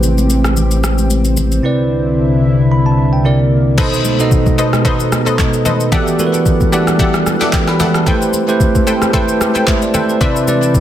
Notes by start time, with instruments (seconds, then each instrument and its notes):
Already playing: sub bass A1, analog synth pad C3 C4 G4, tine electric piano A3 E4 G4 B4 C5
0.03 low conga, shaker
0.18 high conga, shaker
0.30 shaker
0.44 cross-stick, high conga, shaker
0.57 low conga, shaker
0.71 shaker
0.84 cross-stick, high conga, shaker
0.98 high conga, shaker
1.10 high conga, shaker
1.25 shaker
1.37 high conga, low conga, shaker
1.52 shaker
1.63 analog synth pad C2 D3 E4, tine electric piano C3 C4 E4 B4 D5
2.72 tine electric piano B5
2.86 tine electric piano A5
3.13 tine electric piano G5
3.24 tine electric piano C3 C4 E4 A#4 D5, analog synth pad A#3
3.78 analog synth pad B2 A3 B3 D#4, tine electric piano B2 B3 D#4 A4 C5, synth pluck A4 B4 C5 D#5, kick, crash, low conga, shaker
3.93 shaker
4.05 high conga, shaker
4.19 tine electric piano B2 B3 D#4 A4 D#5, shaker
4.31 kick, low conga, shaker
4.46 kick, high conga, shaker
4.58 synth pluck A4 B4 C5 D#5, shaker
4.73 cross-stick, high conga, shaker
4.85 tine electric piano B2 B3 D#4 A4 B4, synth pluck A4 B4 C5 D#5, kick, low conga, shaker
5.00 shaker
5.12 cross-stick, high conga, shaker
5.26 synth pluck A4 B4 C5 D#5, high conga, shaker
5.39 kick, clap, high conga, shaker
5.53 shaker
5.65 synth pluck A4 B4 C5 D#5, high conga, low conga, shaker
5.80 shaker
5.92 analog synth pad E3 G3 D4 F#5, tine electric piano E3 B3 F#4 G4 A4 D5, synth pluck G4 A4 D5 E5 F#5, kick, low conga, shaker
6.08 shaker
6.19 tine electric piano E3 B3 F#4 G4 A4 A#4, high conga, shaker
6.27 tine electric piano B4
6.34 shaker
6.46 kick, low conga, shaker
6.61 kick, high conga, shaker
6.72 tine electric piano E3 B3 F#4 G4 A4 D5, synth pluck G4 A4 D5 E5 F#5, shaker
6.87 cross-stick, high conga, shaker
6.99 synth pluck G4 A4 D5 E5 F#5, kick, low conga, shaker
7.14 cross-stick, shaker
7.26 cross-stick, high conga, shaker
7.41 synth pluck G4 A4 D5 E5 F#5, snare, high conga, shaker
7.53 tine electric piano G5, kick, clap, high conga, shaker
7.67 tine electric piano B5, cross-stick, snare, shaker
7.80 synth pluck G4 A4 D5 E5 F#5, snare, high conga, low conga, shaker
7.94 tine electric piano A5, cross-stick, shaker
8.06 tine electric piano A3 E4 G4 B4 C5, analog synth pad A3 C4 G4 A4, synth pluck A4 B4 C5 G5, kick, low conga, shaker
8.22 shaker
8.33 high conga, shaker
8.48 tine electric piano A3 E4 G4 B4 C5, shaker
8.60 kick, low conga, shaker
8.75 kick, high conga, shaker
8.87 synth pluck A4 B4 C5 G5, shaker
9.02 cross-stick, high conga, shaker
9.13 tine electric piano A3 E4 G4 B4 C5, synth pluck A4 B4 C5 G5, kick, low conga, shaker
9.28 shaker
9.41 cross-stick, high conga, shaker
9.55 synth pluck A4 B4 C5 G5, high conga, shaker
9.67 tine electric piano E5, kick, clap, high conga, shaker
9.82 tine electric piano D5, shaker
9.94 synth pluck A4 B4 C5 G5, tine electric piano C5, high conga, low conga, shaker
10.09 tine electric piano B4, shaker
10.21 tine electric piano C3 C4 E4 B4 D5, analog synth pad E3 D4, synth pluck B4 C5 D5 E5, kick, low conga, shaker
10.36 shaker
10.47 tine electric piano C3 C4 E4 B4 D5, high conga, shaker
10.63 shaker
10.74 kick, low conga, shaker